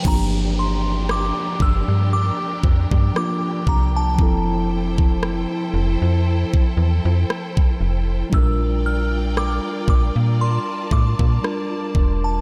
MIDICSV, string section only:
0, 0, Header, 1, 2, 480
1, 0, Start_track
1, 0, Tempo, 1034483
1, 24, Time_signature, 4, 2, 24, 8
1, 5759, End_track
2, 0, Start_track
2, 0, Title_t, "String section"
2, 0, Program_c, 0, 48
2, 22, Note_on_c, 0, 62, 70
2, 22, Note_on_c, 0, 79, 74
2, 23, Note_on_c, 0, 67, 64
2, 23, Note_on_c, 0, 70, 65
2, 1924, Note_off_c, 0, 62, 0
2, 1925, Note_off_c, 0, 67, 0
2, 1925, Note_off_c, 0, 70, 0
2, 1943, Note_on_c, 0, 64, 73
2, 1943, Note_on_c, 0, 69, 69
2, 1944, Note_on_c, 0, 72, 66
2, 3844, Note_off_c, 0, 79, 0
2, 3845, Note_off_c, 0, 64, 0
2, 3845, Note_off_c, 0, 69, 0
2, 3845, Note_off_c, 0, 72, 0
2, 3862, Note_on_c, 0, 70, 64
2, 3862, Note_on_c, 0, 79, 83
2, 3863, Note_on_c, 0, 65, 72
2, 3863, Note_on_c, 0, 74, 69
2, 4813, Note_off_c, 0, 79, 0
2, 4824, Note_on_c, 0, 81, 78
2, 5759, Note_off_c, 0, 65, 0
2, 5759, Note_off_c, 0, 70, 0
2, 5759, Note_off_c, 0, 74, 0
2, 5759, Note_off_c, 0, 81, 0
2, 5759, End_track
0, 0, End_of_file